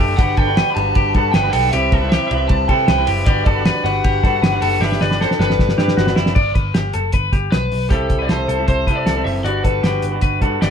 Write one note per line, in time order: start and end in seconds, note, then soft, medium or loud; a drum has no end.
0.00 0.15 F#1 loud
0.00 0.19 D3 medium
0.00 0.17 A3 medium
0.00 0.15 D4 medium
0.00 0.18 D4 medium
0.00 0.15 G4 medium
0.00 0.18 G4 medium
0.00 0.19 G4 medium
0.00 0.16 A4 medium
0.00 0.18 A4 medium
0.17 0.34 G1 loud
0.17 0.47 G3 medium
0.17 1.69 D4 medium
0.17 0.48 D4 medium
0.17 0.47 F#4 medium
0.17 1.70 G4 medium
0.17 0.37 G4 medium
0.17 1.71 B4 medium
0.17 0.37 F#5 loud
0.17 kick loud
0.17 hi-hat pedal medium
0.17 ride medium
0.21 0.46 B4 medium
0.37 0.61 G1 medium
0.37 0.57 A4 medium
0.37 0.70 G5 loud
0.37 kick loud
0.37 ride medium
0.47 0.76 D4 soft
0.47 0.77 F#4 soft
0.47 0.76 B4 medium
0.57 0.94 B4 medium
0.57 snare loud
0.57 ride medium
0.70 0.75 B5 medium
0.75 0.92 G1 loud
0.75 1.14 G3 medium
0.75 1.14 D4 medium
0.75 1.15 F#4 medium
0.75 1.35 A5 loud
0.75 ride medium
0.79 1.17 B4 medium
0.95 1.12 G1 loud
0.95 1.15 G4 medium
0.95 kick medium
0.95 ride medium
1.14 1.30 G2 loud
1.14 1.44 G3 medium
1.14 1.44 D4 medium
1.14 1.43 F#4 medium
1.14 1.34 A4 medium
1.14 1.42 B4 medium
1.14 kick medium
1.14 ride medium
1.31 1.50 G1 medium
1.31 1.52 B4 medium
1.31 1.49 G5 loud
1.31 snare loud
1.31 ride medium
1.43 1.71 G3 medium
1.43 1.73 D4 medium
1.43 1.73 F#4 medium
1.43 1.73 B4 medium
1.51 1.69 B1 medium
1.51 1.72 A4 medium
1.51 1.70 G5 medium
1.51 open hi-hat medium
1.51 ride medium
1.71 1.89 C2 loud
1.71 2.01 G3 medium
1.71 3.24 C4 medium
1.71 2.02 C4 medium
1.71 3.25 E4 medium
1.71 2.01 E4 medium
1.71 1.93 G4 loud
1.71 3.25 B4 medium
1.71 2.08 E5 loud
1.71 hi-hat pedal medium
1.71 ride medium
1.75 2.00 B4 medium
1.92 2.16 C2 loud
1.92 2.12 A4 medium
1.92 kick loud
1.92 ride medium
2.01 2.29 G3 soft
2.01 2.30 C4 soft
2.01 2.31 E4 soft
2.01 2.30 B4 medium
2.09 2.66 G4 medium
2.09 2.27 E5 loud
2.09 snare loud
2.09 ride medium
2.28 2.47 C2 loud
2.28 2.68 G3 medium
2.28 2.69 C4 medium
2.28 2.49 E5 medium
2.28 ride medium
2.33 2.70 E4 medium
2.33 2.72 B4 medium
2.48 2.66 C2 loud
2.48 2.68 A5 loud
2.48 kick medium
2.48 ride medium
2.68 2.85 C3 loud
2.68 2.98 G3 medium
2.68 2.98 C4 medium
2.68 2.97 E4 medium
2.68 2.88 A4 medium
2.68 3.07 G5 loud
2.68 kick medium
2.68 ride medium
2.72 2.97 B4 medium
2.88 3.04 C2 loud
2.88 3.08 B4 medium
2.88 snare loud
2.88 ride medium
2.98 3.28 C3 medium
2.98 3.28 E3 medium
2.98 3.25 G3 medium
2.98 3.27 C4 medium
2.98 3.27 E4 medium
2.98 3.27 B4 medium
3.07 3.24 F#1 medium
3.07 3.26 G4 medium
3.07 open hi-hat medium
3.07 ride medium
3.26 3.43 G1 loud
3.26 3.56 G3 medium
3.26 3.56 D4 medium
3.26 4.78 F#4 medium
3.26 3.56 F#4 medium
3.26 3.46 G4 loud
3.26 4.78 G4 medium
3.26 4.79 B4 medium
3.26 3.54 B4 medium
3.26 3.44 D5 loud
3.26 kick loud
3.26 hi-hat pedal medium
3.26 ride medium
3.45 3.70 G1 loud
3.45 3.66 A4 medium
3.45 3.82 D5 loud
3.45 kick loud
3.45 ride medium
3.55 3.84 F#4 soft
3.55 3.84 B4 medium
3.59 3.83 D4 soft
3.65 4.02 B4 medium
3.65 snare loud
3.65 ride medium
3.83 4.00 G1 medium
3.83 4.22 G3 medium
3.83 4.23 D4 medium
3.83 4.24 F#4 medium
3.83 4.26 B4 medium
3.83 4.84 F#5 loud
3.83 ride medium
4.04 4.20 G1 loud
4.04 4.24 G4 medium
4.04 kick medium
4.04 ride medium
4.23 4.40 G2 loud
4.23 4.52 G3 medium
4.23 4.53 D4 medium
4.23 4.52 F#4 medium
4.23 4.42 A4 medium
4.23 4.51 B4 medium
4.23 kick loud
4.23 snare soft
4.23 ride medium
4.42 4.59 G1 loud
4.42 4.61 B4 medium
4.42 snare loud
4.42 ride medium
4.52 4.79 G3 medium
4.52 4.81 D4 medium
4.52 4.82 F#4 medium
4.52 4.81 B4 medium
4.62 4.78 F#1 medium
4.62 4.81 A4 medium
4.62 open hi-hat medium
4.62 ride medium
4.80 4.97 G1 loud
4.80 5.10 G3 medium
4.80 6.33 D4 medium
4.80 5.11 D4 medium
4.80 5.00 G4 medium
4.80 6.33 G4 medium
4.80 5.11 G4 medium
4.80 6.34 B4 medium
4.80 5.09 B4 medium
4.80 5.01 E5 loud
4.80 snare medium
4.92 snare medium
5.01 5.25 G1 medium
5.01 5.20 B4 medium
5.01 5.20 D5 medium
5.01 snare medium
5.11 5.39 D4 soft
5.11 5.40 G4 soft
5.11 5.39 B4 medium
5.11 snare medium
5.21 5.75 A4 medium
5.21 5.27 C5 medium
5.21 snare medium
5.31 snare medium
5.39 5.55 G1 loud
5.39 5.77 G3 medium
5.39 5.78 D4 medium
5.39 5.79 G4 medium
5.39 6.17 B4 medium
5.39 5.81 B4 medium
5.39 snare medium
5.50 snare medium
5.59 5.75 G1 loud
5.59 kick medium
5.59 snare medium
5.69 snare medium
5.77 5.94 G2 medium
5.77 6.07 G3 medium
5.77 6.07 D4 medium
5.77 5.97 G4 medium
5.77 6.07 G4 medium
5.77 6.06 B4 medium
5.77 snare medium
5.88 snare medium
5.97 6.13 G1 medium
5.97 6.17 F#4 medium
5.97 snare loud
6.07 6.37 G3 medium
6.07 6.37 D4 medium
6.07 6.37 G4 medium
6.07 6.36 B4 medium
6.07 snare medium
6.16 6.33 F#1 medium
6.16 6.35 E4 medium
6.16 snare loud
6.26 snare medium
6.35 6.52 G1 loud
6.35 6.55 D5 loud
6.35 kick loud
6.35 crash medium
6.55 6.71 G1 medium
6.55 6.74 B4 medium
6.55 kick loud
6.55 closed hi-hat medium
6.74 6.91 G1 medium
6.74 6.94 G4 medium
6.74 snare loud
6.74 closed hi-hat medium
6.93 7.11 F#1 medium
6.93 7.13 A4 medium
6.93 closed hi-hat medium
7.12 7.30 G1 medium
7.12 7.33 B4 medium
7.12 kick medium
7.12 closed hi-hat medium
7.33 7.48 G1 medium
7.33 7.52 G4 medium
7.33 kick medium
7.33 snare soft
7.33 closed hi-hat medium
7.52 7.68 B1 medium
7.52 7.89 B4 medium
7.52 7.88 B4 medium
7.52 snare loud
7.52 closed hi-hat medium
7.72 7.88 B1 medium
7.72 open hi-hat medium
7.89 8.07 C2 loud
7.89 8.27 G3 soft
7.89 8.27 C4 medium
7.89 8.29 E4 medium
7.89 8.18 G4 medium
7.89 8.23 A4 medium
7.89 8.30 A4 medium
7.89 kick loud
7.89 closed hi-hat medium
8.10 8.26 C2 medium
8.10 kick medium
8.10 closed hi-hat medium
8.19 8.46 B4 medium
8.19 8.29 D5 medium
8.27 8.45 C2 medium
8.27 8.57 G3 medium
8.27 8.58 C4 medium
8.27 8.57 E4 medium
8.27 8.65 C5 medium
8.27 snare medium
8.27 closed hi-hat medium
8.31 8.56 A4 medium
8.48 8.65 C2 medium
8.48 8.68 A4 medium
8.48 closed hi-hat medium
8.57 8.86 G3 soft
8.57 8.87 C4 soft
8.57 8.87 E4 soft
8.57 8.87 A4 soft
8.68 8.84 C2 medium
8.68 8.95 C5 medium
8.68 8.87 C5 medium
8.68 kick medium
8.68 closed hi-hat medium
8.87 9.03 C3 medium
8.87 9.16 G3 soft
8.87 9.15 C4 medium
8.87 9.15 E4 medium
8.87 9.15 A4 medium
8.87 9.06 B4 medium
8.87 kick medium
8.87 closed hi-hat medium
8.96 9.24 D5 medium
9.06 9.22 C2 medium
9.06 9.25 A4 medium
9.06 snare medium
9.06 closed hi-hat medium
9.16 9.46 C3 soft
9.16 9.46 E3 medium
9.16 9.44 G3 medium
9.16 9.45 C4 medium
9.16 9.45 E4 medium
9.16 9.45 A4 medium
9.25 9.42 F#1 medium
9.25 9.44 G4 medium
9.25 9.30 E5 medium
9.25 open hi-hat medium
9.44 9.61 G1 medium
9.44 9.82 G3 medium
9.44 9.83 D4 medium
9.44 9.64 F#4 medium
9.44 9.84 F#4 medium
9.44 9.85 B4 medium
9.44 9.64 D5 medium
9.44 closed hi-hat medium
9.64 9.81 G1 medium
9.64 9.83 A4 medium
9.64 10.03 B4 medium
9.64 kick medium
9.64 closed hi-hat medium
9.83 10.00 G1 medium
9.83 10.12 G3 soft
9.83 10.13 D4 soft
9.83 10.13 F#4 medium
9.83 10.20 G4 medium
9.83 10.11 B4 medium
9.83 snare loud
9.83 closed hi-hat medium
10.02 10.19 G1 medium
10.02 closed hi-hat medium
10.12 10.41 D4 soft
10.12 10.42 F#4 soft
10.12 10.41 B4 soft
10.21 10.38 G1 loud
10.21 10.42 B4 medium
10.21 kick medium
10.21 closed hi-hat medium
10.41 10.58 G2 medium
10.41 10.70 G3 medium
10.41 10.70 D4 medium
10.41 10.70 F#4 medium
10.41 10.61 A4 medium
10.41 10.70 B4 medium
10.41 kick medium
10.41 closed hi-hat medium
10.61 10.70 G1 medium
10.61 10.70 G4 medium
10.61 10.70 D5 medium
10.61 snare loud
10.61 closed hi-hat medium